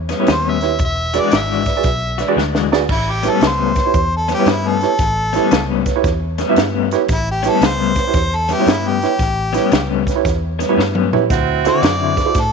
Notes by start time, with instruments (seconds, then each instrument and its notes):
Already playing: fingered electric bass E2
0.09 clean electric guitar A2 G3 B3 C#4, upright piano B4 C#5, snare, closed hi-hat
0.20 upright piano E4 G4 B4 C#5
0.27 fingered electric bass D#2, clean electric guitar A2 G3 B3 C#4, snare, closed hi-hat
0.33 harmonica C5
0.50 harmonica E5
0.61 upright piano E4 G4 B4 C#5, snare, closed hi-hat
0.79 fingered electric bass E1, kick, closed hi-hat
0.85 harmonica E5
1.14 clean electric guitar E3 G#3 D4 F#4, upright piano F#4 G#4 B4 D5, snare, closed hi-hat
1.19 harmonica D5
1.32 fingered electric bass G#1, clean electric guitar E3 G#3 D4 F#4, snare, closed hi-hat
1.37 harmonica E5
1.66 upright piano B4 D5, kick, snare, closed hi-hat
1.77 upright piano F#4 G#4 B4 D5
1.83 fingered electric bass B1, kick, snare, closed hi-hat
2.18 clean electric guitar E3 G#3 D4 F#4, upright piano B4 D5, snare, closed hi-hat
2.28 upright piano F#4 G#4 B4 D5
2.36 fingered electric bass D2, clean electric guitar E3 G#3 D4 F#4, snare
2.55 snare
2.72 upright piano F#4 G#4 B4 D5, snare
2.89 fingered electric bass A1, harmonica E4, kick, snare, crash
3.11 harmonica G4
3.23 clean electric guitar A2 G3 B3 C#4, upright piano E4 G4 B4 C#5, snare, closed hi-hat
3.30 harmonica A4
3.41 fingered electric bass C#2, clean electric guitar A2 G3 B3 C#4, snare, closed hi-hat
3.47 harmonica C5
3.76 upright piano B4 C#5, kick, snare, closed hi-hat
3.86 upright piano E4 G4 B4 C#5
3.94 fingered electric bass E2, kick, closed hi-hat
4.17 harmonica A4
4.28 clean electric guitar A2 G3 B3 C#4, upright piano B4 C#5, snare, closed hi-hat
4.34 harmonica G4
4.39 upright piano E4 G4 B4 C#5
4.46 fingered electric bass G2, clean electric guitar A2 G3 B3 C#4, snare, closed hi-hat
4.51 harmonica E4
4.68 harmonica A4
4.81 upright piano E4 G4 B4 C#5, snare, closed hi-hat
4.99 fingered electric bass A1, kick, snare, closed hi-hat
5.33 clean electric guitar A2 G3 B3 C#4, upright piano E4 G4 B4 C#5, snare, closed hi-hat
5.51 fingered electric bass C#2, clean electric guitar A2 G3 B3 C#4, snare, closed hi-hat
5.86 upright piano B4 C#5, kick, snare, closed hi-hat
5.96 upright piano E4 G4 B4 C#5
6.04 fingered electric bass E2, kick, snare, closed hi-hat
6.38 clean electric guitar A2 G3 B3 C#4, upright piano B4 C#5, snare, closed hi-hat
6.49 upright piano E4 G4 B4 E5
6.56 fingered electric bass G2, clean electric guitar A2 G3 B3 C#4, snare, closed hi-hat
6.91 upright piano E4 G4 B4 C#5, snare, closed hi-hat
7.09 fingered electric bass A1, kick, snare, closed hi-hat
7.14 harmonica E4
7.31 harmonica G4
7.43 clean electric guitar A2 G3 B3 C#4, upright piano E4 G4 B4 C#5, snare, closed hi-hat
7.49 harmonica A4
7.61 fingered electric bass C#2, clean electric guitar A2 G3 B3 C#4, snare, closed hi-hat
7.66 harmonica C5
7.96 upright piano B4 C#5, kick, snare, closed hi-hat
8.07 upright piano E4 G4 B4 C#5
8.14 fingered electric bass E2, kick, snare, closed hi-hat
8.35 harmonica A4
8.49 clean electric guitar A2 G3 B3 C#4, harmonica G4, upright piano B4 E5, snare, closed hi-hat
8.59 upright piano E4 G4 B4 C#5
8.66 fingered electric bass G2, clean electric guitar A2 G3 B3 C#4, snare, closed hi-hat
8.72 harmonica E4
8.87 harmonica G4
9.02 upright piano E4 G4 B4 C#5, snare, closed hi-hat
9.19 fingered electric bass A1, kick, snare, closed hi-hat
9.53 clean electric guitar A2 G3 B3 C#4, upright piano E4 G4 B4 C#5, snare, closed hi-hat
9.71 fingered electric bass C#2, clean electric guitar A2 G3 B3 C#4, snare, closed hi-hat
10.07 upright piano B4 C#5, kick, snare, closed hi-hat
10.15 upright piano E4 G4 B4 C#5
10.25 fingered electric bass E2, kick, snare, closed hi-hat
10.59 clean electric guitar A2 G3 B3 C#4, upright piano B4 C#5, snare, closed hi-hat
10.69 upright piano E4 G4 B4 C#5
10.77 fingered electric bass G2, clean electric guitar A2 G3 B3 C#4, snare
10.95 mid tom
11.13 upright piano E4 G4 B4 C#5, floor tom
11.29 fingered electric bass D2, saxophone section C4 E4 F#4, kick, snare, closed hi-hat
11.65 clean electric guitar D3 C4 E4 F#4, upright piano E4 F#4 A4 C5, harmonica D5, snare, closed hi-hat
11.82 fingered electric bass F#2, clean electric guitar D3 C4 E4 F#4, snare, closed hi-hat
12.17 upright piano A4 C5, kick, snare, closed hi-hat
12.26 upright piano E4 F#4 A4 C5
12.35 fingered electric bass A2, kick, snare, closed hi-hat
12.40 harmonica A4